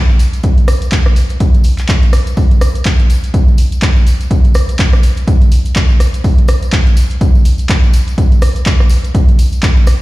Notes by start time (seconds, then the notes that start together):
0.10 tambourine
0.19 open hi-hat, tambourine
0.33 closed hi-hat, tambourine
0.43 kick, closed hi-hat, tambourine
0.57 closed hi-hat, tambourine
0.68 cross-stick, open hi-hat, tambourine
0.82 closed hi-hat, tambourine
0.92 kick, clap, closed hi-hat, tambourine
1.06 cross-stick, tambourine
1.16 open hi-hat, tambourine
1.30 closed hi-hat, tambourine
1.40 kick, closed hi-hat, tambourine
1.54 closed hi-hat, tambourine
1.64 open hi-hat, tambourine
1.78 clap, closed hi-hat, tambourine
1.89 kick, clap, closed hi-hat, tambourine
2.03 closed hi-hat, tambourine
2.13 cross-stick, open hi-hat, tambourine
2.27 closed hi-hat, tambourine
2.37 kick, open hi-hat, tambourine
2.51 closed hi-hat, tambourine
2.61 cross-stick, open hi-hat, tambourine
2.75 closed hi-hat, tambourine
2.85 kick, clap, closed hi-hat, tambourine
3.00 closed hi-hat, tambourine
3.10 open hi-hat, tambourine
3.24 closed hi-hat, tambourine
3.34 kick, closed hi-hat, tambourine
3.48 tambourine
3.58 open hi-hat, tambourine
3.72 closed hi-hat, tambourine
3.82 kick, clap, closed hi-hat, tambourine
3.96 tambourine
4.07 open hi-hat, tambourine
4.21 closed hi-hat, tambourine
4.31 kick, closed hi-hat, tambourine
4.44 closed hi-hat, tambourine
4.54 cross-stick, open hi-hat, tambourine
4.69 closed hi-hat, tambourine
4.79 kick, clap, closed hi-hat, tambourine
4.93 cross-stick, tambourine
5.03 open hi-hat, tambourine
5.17 closed hi-hat, tambourine
5.28 kick, closed hi-hat, tambourine
5.41 closed hi-hat, tambourine
5.51 open hi-hat, tambourine
5.65 closed hi-hat, tambourine
5.75 kick, clap, closed hi-hat, tambourine
5.90 tambourine
6.00 cross-stick, open hi-hat, tambourine
6.14 closed hi-hat, tambourine
6.24 kick, open hi-hat, tambourine
6.38 closed hi-hat, tambourine
6.48 cross-stick, open hi-hat, tambourine
6.62 closed hi-hat, tambourine
6.72 kick, clap, closed hi-hat, tambourine
6.87 closed hi-hat, tambourine
6.97 open hi-hat, tambourine
7.10 closed hi-hat, tambourine
7.21 kick, closed hi-hat, tambourine
7.35 tambourine
7.45 open hi-hat, tambourine
7.58 closed hi-hat, tambourine
7.69 kick, clap, closed hi-hat, tambourine
7.84 tambourine
7.93 open hi-hat, tambourine
8.08 closed hi-hat, tambourine
8.18 kick, closed hi-hat, tambourine
8.32 closed hi-hat, tambourine
8.42 cross-stick, open hi-hat, tambourine
8.56 closed hi-hat, tambourine
8.66 kick, clap, closed hi-hat, tambourine
8.80 cross-stick, tambourine
8.89 open hi-hat, tambourine
9.04 closed hi-hat, tambourine
9.15 kick, closed hi-hat, tambourine
9.28 closed hi-hat, tambourine
9.39 open hi-hat, tambourine
9.52 closed hi-hat, tambourine
9.62 kick, clap, closed hi-hat, tambourine
9.77 tambourine
9.87 cross-stick, open hi-hat, tambourine